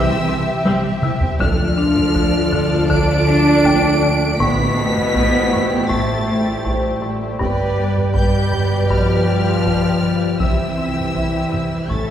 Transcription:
0.00 0.13 C3 loud
0.00 0.17 E3 medium
0.00 0.65 E3 medium
0.00 0.66 E3 medium
0.00 0.17 C4 medium
0.00 1.37 G4 medium
0.00 1.36 E5 medium
0.00 0.66 E6 loud
0.09 0.17 C2 medium
0.09 0.17 C4 medium
0.28 0.35 C2 medium
0.28 0.35 C4 medium
0.28 0.51 C4 medium
0.28 0.36 E4 medium
0.65 0.73 C2 loud
0.65 0.88 C3 medium
0.65 0.83 G3 medium
0.65 0.83 C4 loud
0.65 taiko high medium
0.84 taiko mid medium
1.02 1.10 C2 medium
1.02 1.26 C3 medium
1.02 1.11 C4 medium
1.02 1.11 E4 medium
1.02 taiko mid medium
1.21 1.29 C2 medium
1.21 1.29 C4 medium
1.21 taiko low loud
1.40 4.37 D2 loud
1.40 2.49 D3 medium
1.40 1.63 D3 loud
1.40 2.86 F3 loud
1.40 2.87 F3 loud
1.40 4.37 F3 loud
1.40 7.37 A3 medium
1.40 4.37 D4 loud
1.40 4.36 F4 medium
1.40 4.36 A4 medium
1.40 4.36 D5 medium
1.40 2.86 F6 loud
1.40 taiko loud
1.78 2.00 D4 medium
1.96 taiko low-mid medium
2.15 2.38 D3 medium
2.15 taiko medium
2.53 2.75 D3 medium
2.53 taiko low-mid medium
2.90 3.13 D3 loud
2.90 4.40 D4 loud
2.90 4.41 D4 loud
2.90 4.40 D7 loud
2.90 taiko medium
3.29 3.51 D4 medium
3.65 3.88 D3 medium
3.65 5.87 G5 medium
3.65 taiko medium
4.03 4.25 D3 medium
4.39 7.37 A1 medium
4.39 5.49 A2 medium
4.39 4.63 A2 loud
4.39 5.87 B2 loud
4.39 10.23 G3 loud
4.39 7.36 A3 loud
4.39 5.87 B3 loud
4.39 7.36 E4 medium
4.39 7.36 G4 medium
4.39 7.36 C5 medium
4.39 5.90 B6 loud
4.39 taiko loud
4.78 5.00 A3 medium
4.97 taiko low-mid medium
5.15 5.38 A2 medium
5.15 taiko medium
5.53 5.76 A2 medium
5.53 taiko low-mid medium
5.90 6.12 A2 loud
5.90 7.03 A3 medium
5.90 7.03 A6 loud
5.90 taiko medium
6.28 6.50 A3 medium
6.65 6.88 A2 medium
6.65 8.87 C5 soft
6.65 taiko medium
7.02 7.25 A2 medium
7.39 10.36 G1 medium
7.39 7.62 G2 loud
7.39 10.23 B2 medium
7.39 8.11 G4 medium
7.39 8.11 B4 medium
7.39 8.11 D5 medium
7.39 taiko loud
7.77 8.00 G3 medium
7.97 taiko low-mid medium
8.14 8.37 G2 medium
8.14 8.86 G3 medium
8.14 8.86 G3 loud
8.14 9.62 G4 medium
8.14 10.36 G4 medium
8.14 10.36 B4 medium
8.14 10.36 D5 medium
8.14 8.86 G6 loud
8.14 taiko medium
8.52 8.75 G2 medium
8.52 taiko low-mid medium
8.90 9.13 G2 medium
8.90 10.40 F3 medium
8.90 10.41 F3 loud
8.90 10.41 F6 loud
8.90 taiko medium
9.28 9.50 G3 medium
9.65 9.88 G2 medium
9.65 10.40 F4 medium
9.65 taiko medium
10.02 10.25 G2 medium
10.40 11.87 C2 medium
10.40 10.63 C3 medium
10.40 11.88 E3 medium
10.40 11.86 G3 medium
10.40 11.87 C4 medium
10.40 11.86 C4 medium
10.40 11.87 E4 medium
10.40 11.87 G4 medium
10.40 11.88 E5 medium
10.40 11.87 E6 loud
10.40 taiko loud
10.78 11.00 C4 medium
10.97 taiko low-mid medium
11.15 11.38 C3 soft
11.15 taiko medium
11.52 11.75 C3 medium
11.52 taiko low-mid medium
11.90 12.11 A1 medium
11.90 12.11 A2 medium
11.90 11.96 A2 soft
11.90 12.11 E3 medium
11.90 12.11 A3 medium
11.90 12.11 C#4 medium
11.90 12.11 E4 medium
11.90 12.11 A4 medium
11.90 12.11 E5 medium
11.90 12.11 A6 medium
11.90 taiko medium
11.98 12.04 A2 soft
12.05 12.11 A2 soft

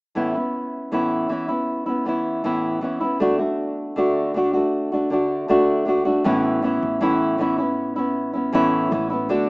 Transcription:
0.15 0.34 A2 medium
0.15 0.35 E3 medium
0.15 0.35 B3 medium
0.15 0.35 C#4 medium
0.15 0.33 E4 medium
0.34 0.91 B3 soft
0.34 0.92 C#4 soft
0.34 0.91 E4 soft
0.92 1.30 A2 medium
0.92 1.28 E3 medium
0.92 1.29 B3 medium
0.92 1.30 C#4 medium
0.92 1.31 E4 medium
1.29 1.49 E3 medium
1.29 1.49 B3 medium
1.29 1.49 C#4 soft
1.29 1.47 E4 medium
1.48 1.88 B3 soft
1.48 1.86 C#4 soft
1.48 1.85 E4 medium
1.86 2.05 B3 soft
1.86 2.06 C#4 soft
1.86 2.06 E4 soft
2.05 2.43 E3 soft
2.05 2.44 B3 medium
2.05 2.44 C#4 medium
2.05 2.45 E4 medium
2.44 2.82 A2 medium
2.44 2.80 E3 medium
2.44 2.81 B3 medium
2.44 2.82 C#4 medium
2.44 2.83 E4 medium
2.81 3.01 E3 soft
2.81 3.01 B3 soft
2.81 3.01 C#4 medium
2.81 2.99 E4 soft
3.00 3.20 B3 soft
3.00 3.21 C#4 soft
3.00 3.20 E4 soft
3.20 3.39 D3 medium
3.20 3.39 A3 medium
3.20 3.39 D4 medium
3.20 3.37 F#4 medium
3.38 3.96 A3 soft
3.38 3.97 D4 soft
3.38 3.96 F#4 soft
3.96 4.33 D3 medium
3.96 4.34 A3 medium
3.96 4.35 D4 medium
3.96 4.36 F#4 medium
4.34 4.53 D3 medium
4.34 4.54 A3 soft
4.34 4.54 D4 medium
4.34 4.52 F#4 medium
4.53 4.93 A3 soft
4.53 4.92 D4 soft
4.53 4.91 F#4 soft
4.92 5.10 A3 soft
4.92 5.11 D4 soft
4.92 5.11 F#4 soft
5.10 5.47 D3 medium
5.10 5.48 A3 medium
5.10 5.49 D4 medium
5.10 5.49 F#4 medium
5.48 5.84 D3 medium
5.48 5.85 A3 medium
5.48 5.87 D4 medium
5.48 5.88 F#4 medium
5.85 6.05 D3 medium
5.85 6.06 A3 soft
5.85 6.05 D4 medium
5.85 6.04 F#4 medium
6.05 6.25 A3 soft
6.05 6.25 D4 soft
6.05 6.25 F#4 medium
6.24 6.78 A1 medium
6.24 6.63 A2 medium
6.24 6.61 E3 medium
6.24 6.62 B3 medium
6.24 6.63 C#4 medium
6.24 6.64 E4 medium
6.62 7.00 E3 medium
6.62 7.00 B3 medium
6.62 7.01 C#4 medium
6.62 7.02 E4 medium
6.83 8.88 A1 medium
7.01 7.39 A2 medium
7.01 7.37 E3 medium
7.01 7.38 B3 medium
7.01 7.40 C#4 medium
7.01 7.40 E4 medium
7.38 7.58 E3 medium
7.38 7.58 B3 medium
7.38 7.59 C#4 medium
7.38 7.57 E4 medium
7.58 7.98 B3 soft
7.58 7.97 C#4 soft
7.58 7.95 E4 soft
7.96 8.35 B3 soft
7.96 8.34 C#4 soft
7.96 8.32 E4 soft
8.33 8.53 B3 soft
8.33 8.53 C#4 soft
8.33 8.53 E4 soft
8.53 8.91 A2 medium
8.53 8.90 E3 medium
8.53 8.91 B3 medium
8.53 8.92 C#4 medium
8.53 8.92 E4 medium
8.91 9.27 A1 medium
8.91 9.10 E3 medium
8.91 9.11 B3 medium
8.91 9.11 C#4 medium
8.91 9.09 E4 medium
9.10 9.30 B3 soft
9.10 9.30 C#4 soft
9.10 9.29 E4 soft
9.29 9.49 D2 medium
9.29 9.49 D3 medium
9.29 9.49 D4 medium
9.29 9.49 F#4 medium
9.29 9.49 A4 medium

